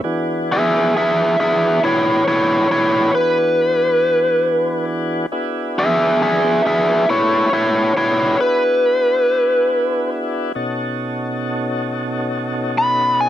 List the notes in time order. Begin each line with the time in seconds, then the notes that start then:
0.04 E3 B3 D4 F#4 G#4
0.52 G#4 E5
0.97 G#4 E5
1.40 G#4 E5
1.84 E4 C#5
2.28 E4 C#5
2.71 E4 C#5
3.15 B4
5.32 B3 D4 E4 F#4 G#4
5.79 G#4 E5
6.22 G#4 E5
6.66 G#4 E5
7.10 E4 C#5
7.53 E4 C#5
7.97 E4 C#5
8.41 B4
10.55 B2 C#4 D#4 F#4 A4
12.78 B5
13.21 G#5